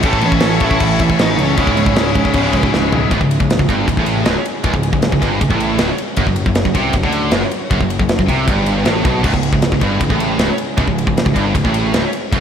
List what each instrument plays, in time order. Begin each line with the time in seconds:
Already playing: string section G#5
0.03 picked electric bass A1, distorted electric guitar A2 E3 A3 C#4 E4 A4, lead electric guitar A3 A4, string section A4 C#5 C#6, kick, crash
0.11 distorted electric guitar E4 A4, kick
0.18 distorted electric guitar E4 A4, crash
0.23 picked electric bass A1, distorted electric guitar A2 E3 E4 A4, lead electric guitar C#4 C#5
0.32 distorted electric guitar E4 A4, kick
0.40 picked electric bass A1, distorted electric guitar A2 E3 E4 A4, snare, crash
0.49 distorted electric guitar E4 A4
0.56 distorted electric guitar E4 A4, crash
0.61 distorted electric guitar A2 E3 A3 E4, lead electric guitar E5, kick
0.65 lead electric guitar E4, distorted electric guitar A4
0.71 distorted electric guitar E4 A4, kick
0.79 picked electric bass A1, distorted electric guitar A2 E3 E4 A4, kick, crash
0.88 distorted electric guitar E4 A4
0.95 distorted electric guitar E4 A4
0.99 picked electric bass A1, distorted electric guitar A2 E3 E4 A4, kick, crash
1.10 distorted electric guitar E4 A4, kick
1.17 picked electric bass A1, distorted electric guitar A2 E3 E4 A4, snare, crash
1.21 lead electric guitar D#4 D#5
1.25 distorted electric guitar E4 A4
1.32 distorted electric guitar E4 A4
1.38 picked electric bass C#2, distorted electric guitar A2 E3 E4 A4, lead electric guitar C#5, crash
1.43 lead electric guitar C#4
1.48 distorted electric guitar E4 A4
1.56 picked electric bass C#1, distorted electric guitar C#2 G#2 C#3 G#3 E4, string section G#4 C#5, kick, crash
1.64 distorted electric guitar G#3 E4, kick
1.71 distorted electric guitar G#3 E4
1.77 picked electric bass C#1, distorted electric guitar C#2 G#2 G#3 E4, crash
1.86 distorted electric guitar G#3 E4, kick
1.95 picked electric bass C#1, distorted electric guitar C#2 G#2 G#3 E4, snare, crash
2.03 distorted electric guitar G#3 E4
2.11 distorted electric guitar G#3 E4
2.15 picked electric bass C#1, distorted electric guitar C#2 G#2 G#3, kick, crash
2.19 distorted electric guitar E4
2.25 distorted electric guitar G#3 E4, kick
2.33 picked electric bass C#1, distorted electric guitar C#2 G#2 C#3 G#3 E4, kick, crash
2.41 distorted electric guitar G#3 E4
2.49 distorted electric guitar G#3 E4, crash
2.53 picked electric bass C#1, distorted electric guitar C#2 G#2 G#3 E4, kick
2.63 distorted electric guitar G#3 E4, kick
2.72 picked electric bass C#1, distorted electric guitar C#2 G#2 G#3 E4, snare
2.80 distorted electric guitar G#3 E4
2.88 distorted electric guitar G#3 E4
2.92 picked electric bass B1, distorted electric guitar C#2 G#2 G#3 E4, floor tom
3.02 distorted electric guitar G#3 E4
3.10 picked electric bass C#1, distorted electric guitar C#2, string section C#3 G#3 E4 G#4, kick, ride
3.21 picked electric bass C#1, distorted electric guitar C#2, kick
3.31 ride
3.40 picked electric bass C#1, distorted electric guitar C#2, kick
3.50 snare, ride
3.59 picked electric bass C#1, distorted electric guitar C#2, kick
3.69 picked electric bass G1, distorted electric guitar G2, kick, ride
3.87 picked electric bass C#1, distorted electric guitar C#2, kick, ride
3.97 picked electric bass A1, distorted electric guitar A2, kick
4.06 ride
4.25 picked electric bass C#1, distorted electric guitar C#2, snare, ride
4.45 ride
4.64 picked electric bass C#1, distorted electric guitar C#2, kick, ride
4.74 picked electric bass C#1, distorted electric guitar C#2, kick
4.83 ride
4.93 picked electric bass C#1, distorted electric guitar C#2, kick
5.02 snare, ride
5.12 picked electric bass C#1, distorted electric guitar C#2, kick
5.21 picked electric bass G1, distorted electric guitar G2, kick, ride
5.41 picked electric bass C#1, distorted electric guitar C#2, kick, ride
5.50 picked electric bass A1, distorted electric guitar A2, kick
5.60 ride
5.78 picked electric bass C#1, distorted electric guitar C#2, snare, ride
5.98 ride
6.16 picked electric bass F#1, distorted electric guitar F#2, string section F#3 F#4 C#5, kick, ride
6.27 picked electric bass F#1, distorted electric guitar F#2, kick
6.36 ride
6.46 picked electric bass F#1, distorted electric guitar F#2, kick
6.55 snare, ride
6.65 picked electric bass F#1, distorted electric guitar F#2, kick
6.75 picked electric bass C2, distorted electric guitar C3, kick, ride
6.93 picked electric bass F#1, distorted electric guitar F#2, kick, ride
7.03 picked electric bass D2, distorted electric guitar D3, kick
7.12 ride
7.31 picked electric bass F#1, distorted electric guitar F#2, snare, ride
7.51 ride
7.70 picked electric bass F#1, distorted electric guitar F#2, kick, ride
7.80 picked electric bass F#1, distorted electric guitar F#2, kick
7.90 ride
7.99 picked electric bass F#1, distorted electric guitar F#2, kick
8.09 snare, ride
8.18 picked electric bass F#1, distorted electric guitar F#2, kick
8.26 picked electric bass C2, distorted electric guitar C3, kick, ride
8.46 picked electric bass G1, distorted electric guitar G2, kick, ride
8.66 ride
8.85 picked electric bass A1, distorted electric guitar A2, snare, ride
9.04 picked electric bass B1, distorted electric guitar B2, kick, ride
9.23 picked electric bass C#1, distorted electric guitar C#2, string section G#3 E4 G#4, kick, crash
9.33 picked electric bass C#1, distorted electric guitar C#2, kick
9.43 ride
9.53 picked electric bass C#1, distorted electric guitar C#2, kick
9.62 snare, ride
9.72 picked electric bass C#1, distorted electric guitar C#2, kick
9.80 picked electric bass G1, distorted electric guitar G2, kick, ride
10.00 picked electric bass C#1, distorted electric guitar C#2, kick, ride
10.10 picked electric bass A1, distorted electric guitar A2, kick
10.20 ride
10.39 picked electric bass C#1, distorted electric guitar C#2, snare, ride
10.58 ride
10.78 picked electric bass C#1, distorted electric guitar C#2, kick, ride
10.87 picked electric bass C#1, distorted electric guitar C#2, kick
10.98 ride
11.07 picked electric bass C#1, distorted electric guitar C#2, kick
11.17 snare, ride
11.26 picked electric bass C#1, distorted electric guitar C#2, kick
11.35 picked electric bass G1, distorted electric guitar G2, kick, ride
11.55 picked electric bass C#1, distorted electric guitar C#2, kick, ride
11.65 picked electric bass A1, distorted electric guitar A2, kick
11.74 ride
11.94 picked electric bass C#1, distorted electric guitar C#2, snare, ride
12.13 ride
12.30 picked electric bass F#1, distorted electric guitar F#2, string section C#3 F#3 F#4 C#5, kick, ride